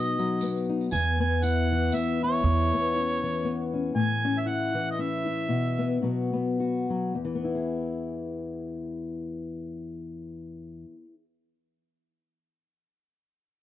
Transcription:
0.00 0.91 B2 medium
0.00 0.19 F#3 medium
0.00 0.42 B3 medium
0.00 0.68 D#4 medium
0.00 0.90 F#4 medium
0.00 0.70 D#5 medium
0.19 0.89 F#3 medium
0.19 tambourine soft
0.41 1.19 B3 medium
0.41 tambourine medium
0.56 tambourine soft
0.69 0.89 D#4 medium
0.81 tambourine soft
0.91 2.43 E2 medium
0.91 1.89 E2 medium
0.91 1.19 G#5 loud
0.91 tambourine medium
1.20 1.92 B3 medium
1.20 1.45 G#5 medium
1.42 2.22 E4 medium
1.42 1.96 F#5 medium
1.42 tambourine medium
1.72 3.23 E3 medium
1.92 2.41 B3 medium
1.92 2.22 E5 medium
1.92 tambourine medium
2.23 2.96 E4 medium
2.23 3.70 C#5 medium
2.33 tambourine soft
2.43 2.70 E2 medium
2.43 3.94 E2 medium
2.74 3.43 B3 medium
2.97 3.72 C#4 soft
3.23 4.73 E3 medium
3.45 3.92 B3 medium
3.74 3.93 C#4 medium
3.95 5.46 A2 medium
3.95 4.41 G#5 loud
4.25 4.98 C#4 medium
4.39 4.49 E5 medium
4.46 5.25 E4 medium
4.46 4.91 F#5 medium
4.74 6.02 E3 medium
4.91 5.03 D#5 medium
4.99 5.47 C#4 medium
4.99 6.05 E5 medium
5.27 5.47 E4 medium
5.49 6.01 B2 medium
5.79 6.00 B3 medium
6.02 7.15 B2 medium
6.02 6.89 F#3 soft
6.02 6.32 B3 soft
6.02 6.59 F#4 medium
6.33 7.12 B3 medium
6.60 7.13 F#4 medium
6.90 7.12 F#3 medium
7.15 10.84 E2 medium
7.25 10.94 E3 medium
7.35 11.04 B3 medium
7.44 11.14 E4 soft
7.55 11.24 G#4 medium

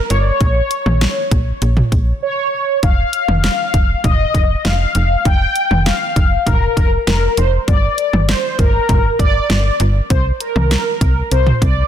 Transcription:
0.00 0.11 A#4 medium
0.10 0.32 G1 loud
0.10 0.17 C#5 medium
0.10 closed hi-hat medium
0.17 0.24 D5 medium
0.24 1.27 C#5 loud
0.41 0.62 A#1 loud
0.41 kick loud
0.41 closed hi-hat medium
0.71 closed hi-hat medium
0.86 1.07 A#1 loud
0.86 mid tom medium
1.01 snare loud
1.01 closed hi-hat medium
1.31 1.53 A#1 medium
1.31 kick medium
1.31 closed hi-hat medium
1.62 1.83 A#1 loud
1.62 closed hi-hat medium
1.77 mid tom medium
1.92 2.13 A#1 loud
1.92 kick medium
1.92 closed hi-hat medium
2.22 2.79 C#5 medium
2.83 3.04 F1 loud
2.83 3.42 F5 loud
2.83 kick loud
2.83 closed hi-hat medium
3.13 closed hi-hat medium
3.28 3.50 F1 loud
3.28 mid tom medium
3.44 4.00 F5 loud
3.44 snare loud
3.44 closed hi-hat medium
3.74 3.95 F1 medium
3.74 kick medium
3.74 closed hi-hat medium
4.04 4.26 F1 loud
4.04 4.67 D#5 loud
4.04 kick medium
4.04 closed hi-hat medium
4.04 mid tom medium
4.34 4.56 F1 loud
4.34 kick medium
4.34 closed hi-hat medium
4.65 4.86 F1 loud
4.65 5.27 F5 loud
4.65 snare loud
4.65 closed hi-hat medium
4.95 5.16 F1 loud
4.95 closed hi-hat medium
5.25 5.47 F1 loud
5.25 5.82 G5 loud
5.25 kick loud
5.25 closed hi-hat medium
5.56 closed hi-hat medium
5.71 5.92 F1 loud
5.71 mid tom medium
5.86 6.48 F5 loud
5.86 snare loud
5.86 closed hi-hat medium
6.16 6.37 F1 loud
6.16 kick medium
6.16 closed hi-hat medium
6.46 6.68 F1 loud
6.46 6.76 A#4 loud
6.46 kick medium
6.46 closed hi-hat medium
6.46 mid tom medium
6.77 6.98 F1 loud
6.77 6.91 A#4 medium
6.77 kick medium
6.77 closed hi-hat medium
7.07 7.28 F1 loud
7.07 7.39 A#4 medium
7.07 snare loud
7.07 closed hi-hat medium
7.37 7.59 F1 loud
7.37 7.51 C5 medium
7.37 closed hi-hat medium
7.68 7.89 G1 loud
7.68 8.24 D5 loud
7.68 kick loud
7.68 closed hi-hat medium
7.98 closed hi-hat medium
8.13 8.35 G1 loud
8.13 mid tom medium
8.28 8.57 C5 medium
8.28 snare loud
8.28 closed hi-hat medium
8.59 8.80 G1 loud
8.59 9.21 A#4 medium
8.59 kick medium
8.59 closed hi-hat medium
8.89 9.11 G1 loud
8.89 kick medium
8.89 closed hi-hat medium
8.89 mid tom medium
9.19 9.41 G1 loud
9.19 9.76 D5 medium
9.19 kick medium
9.19 closed hi-hat medium
9.50 9.71 G1 loud
9.50 snare loud
9.50 closed hi-hat medium
9.80 10.01 G1 loud
9.80 closed hi-hat medium
10.10 10.32 C2 loud
10.10 10.24 C5 medium
10.10 kick loud
10.10 closed hi-hat medium
10.40 11.34 A#4 medium
10.40 closed hi-hat medium
10.56 10.77 C2 loud
10.56 mid tom medium
10.71 snare loud
10.71 closed hi-hat medium
11.01 11.22 C2 medium
11.01 kick medium
11.01 closed hi-hat medium
11.31 11.53 C2 medium
11.31 11.63 C5 loud
11.31 closed hi-hat medium
11.47 mid tom loud
11.62 11.83 C2 loud
11.62 11.88 D5 loud
11.62 kick medium
11.62 closed hi-hat medium

